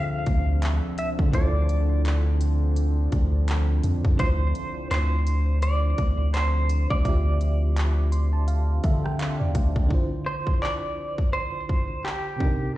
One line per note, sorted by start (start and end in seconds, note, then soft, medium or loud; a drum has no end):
0.00 0.25 D3 loud
0.00 1.27 D3 medium
0.00 9.87 D3 medium
0.00 9.87 F3 medium
0.00 1.30 C4 medium
0.00 9.87 C4 medium
0.00 1.28 D4 medium
0.00 9.87 D4 medium
0.00 1.30 F4 medium
0.00 9.93 G#4 medium
0.00 1.35 C5 medium
0.00 0.64 F5 loud
0.26 0.81 D2 medium
0.26 kick medium
0.26 closed hi-hat soft
0.62 0.98 E5 loud
0.62 clap loud
0.62 closed hi-hat medium
0.98 1.08 E5 medium
0.98 closed hi-hat medium
1.19 1.33 D3 loud
1.19 kick loud
1.29 4.13 D3 medium
1.29 4.14 D4 medium
1.29 kick loud
1.29 closed hi-hat medium
1.34 3.08 D2 loud
1.34 4.15 E4 medium
1.34 4.16 F4 medium
1.34 2.01 D5 medium
1.38 4.17 A4 medium
1.69 closed hi-hat medium
2.05 clap loud
2.05 closed hi-hat medium
2.41 closed hi-hat medium
2.76 closed hi-hat medium
3.12 3.81 D2 loud
3.12 kick medium
3.12 closed hi-hat soft
3.48 clap loud
3.48 closed hi-hat medium
3.83 4.04 F2 loud
3.83 closed hi-hat medium
4.05 4.19 F2 loud
4.05 kick loud
4.15 6.99 D3 medium
4.15 7.00 D4 medium
4.15 closed hi-hat medium
4.19 4.54 D2 loud
4.19 7.01 E4 medium
4.19 7.02 F4 medium
4.19 4.90 C5 loud
4.19 kick loud
4.23 7.03 C5 medium
4.55 closed hi-hat medium
4.91 5.94 D2 loud
4.91 5.62 C5 loud
4.91 clap loud
4.91 closed hi-hat medium
5.27 closed hi-hat medium
5.62 6.30 D5 loud
5.62 closed hi-hat medium
5.98 6.87 D2 medium
5.98 kick medium
5.98 closed hi-hat soft
6.34 6.86 C5 loud
6.34 clap loud
6.34 closed hi-hat medium
6.69 closed hi-hat medium
6.90 7.05 D2 loud
6.90 9.51 D5 loud
6.90 kick loud
7.01 9.85 D3 medium
7.01 9.86 D4 medium
7.05 8.80 D2 loud
7.05 9.88 F4 medium
7.05 9.89 G4 medium
7.05 8.82 E5 medium
7.05 kick loud
7.05 closed hi-hat medium
7.41 closed hi-hat medium
7.77 clap loud
7.77 closed hi-hat medium
8.12 8.31 C6 medium
8.12 closed hi-hat medium
8.33 8.47 A5 medium
8.48 8.81 F5 medium
8.48 closed hi-hat medium
8.84 9.42 D3 loud
8.84 9.03 E5 medium
8.84 kick medium
8.84 closed hi-hat soft
9.04 9.18 G5 medium
9.04 cross-stick medium
9.19 9.38 F5 medium
9.19 clap loud
9.19 closed hi-hat medium
9.40 9.54 E2 loud
9.40 9.87 D5 medium
9.55 9.75 D2 loud
9.55 kick medium
9.55 closed hi-hat medium
9.76 9.90 D2 medium
9.76 kick loud
9.86 12.34 D3 medium
9.86 12.35 D4 medium
9.90 12.36 E4 medium
9.90 12.37 F4 medium
9.90 12.38 C5 medium
9.90 kick loud
10.26 10.62 C5 loud
10.47 kick medium
10.62 11.29 D5 medium
10.62 clap loud
11.18 kick medium
11.33 12.07 C5 loud
11.69 kick medium
12.05 12.76 G4 medium
12.05 clap loud
12.36 12.77 C3 medium
12.36 12.77 C4 medium
12.36 12.77 D4 medium
12.40 12.77 D#4 medium
12.40 12.77 A#4 medium
12.40 kick loud